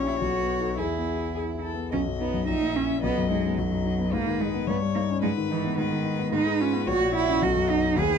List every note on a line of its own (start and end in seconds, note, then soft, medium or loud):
0.00 0.19 A#1 medium
0.00 0.13 C#4 soft
0.00 0.19 E4 soft
0.00 0.19 G4 soft
0.00 0.80 C#5 medium
0.07 0.20 E4 medium
0.21 0.76 B1 soft
0.21 0.77 F#4 medium
0.40 0.71 B3 soft
0.59 0.76 D#4 soft
0.59 0.77 A4 soft
0.78 1.89 E2 soft
0.78 1.62 E4 medium
0.78 1.29 G#4 soft
0.97 1.28 B3 soft
1.17 1.47 E4 soft
1.35 1.43 G#4 soft
1.35 1.66 G#4 soft
1.55 1.85 E4 soft
1.63 1.91 A4 soft
1.74 1.92 B3 soft
1.92 2.47 B1 soft
1.92 2.00 C#4 medium
1.92 2.48 D#5 soft
2.07 2.29 F#2 soft
2.19 2.47 B3 medium
2.19 2.42 D#4 soft
2.34 2.48 F#2 soft
2.47 3.01 A#1 soft
2.47 2.77 D#4 medium
2.47 3.02 E5 soft
2.62 2.84 A#2 soft
2.76 3.02 C#4 medium
2.76 2.97 E4 soft
2.89 3.03 C#4 soft
3.02 3.56 B1 medium
3.02 3.30 B3 medium
3.02 3.56 D#5 soft
3.17 3.39 F#2 soft
3.30 3.60 G#3 medium
3.30 3.52 D#4 soft
3.44 3.66 B3 soft
3.57 4.11 B1 soft
3.57 4.14 F#3 medium
3.57 4.14 D#5 soft
3.71 3.93 F#2 soft
3.86 4.07 D#4 soft
3.99 4.12 B3 soft
4.12 4.66 G#2 medium
4.12 4.42 A#3 medium
4.12 4.68 B4 medium
4.27 4.48 D#3 soft
4.40 4.67 G#3 medium
4.40 4.62 D#4 soft
4.54 4.67 B3 soft
4.67 5.20 G2 medium
4.67 4.76 B3 medium
4.67 5.21 C#5 medium
4.82 5.03 G3 soft
4.95 5.03 A#3 medium
4.95 5.17 D#4 soft
5.10 5.23 C#4 soft
5.22 5.77 G#2 medium
5.22 5.30 G#3 medium
5.22 5.76 B4 medium
5.37 5.58 D#3 soft
5.50 5.79 E3 medium
5.50 5.72 D#4 medium
5.65 5.86 B3 soft
5.77 6.31 G#2 medium
5.77 6.34 D#3 medium
5.77 6.31 B4 medium
5.92 6.13 D#3 soft
6.05 6.27 D#4 soft
6.19 6.32 B3 soft
6.32 6.85 G#2 medium
6.32 6.62 D#4 medium
6.32 6.89 B4 medium
6.45 6.68 G#3 soft
6.60 6.88 C#4 medium
6.60 6.82 F4 medium
6.73 6.87 B3 soft
6.86 7.40 A#1 medium
6.86 7.15 F#4 medium
6.86 7.44 C#5 medium
7.00 7.22 A#2 soft
7.14 7.44 E4 medium
7.14 7.36 F#4 medium
7.28 7.42 C#4 medium
7.42 7.95 B1 medium
7.42 7.71 F#4 medium
7.42 7.97 D#5 medium
7.55 7.77 F#2 soft
7.68 8.00 D#4 medium
7.68 7.91 F#4 medium
7.82 7.96 D#4 soft
7.96 8.18 D#2 medium
7.96 8.18 G#4 loud
7.96 8.18 B4 medium
8.10 8.18 D#3 soft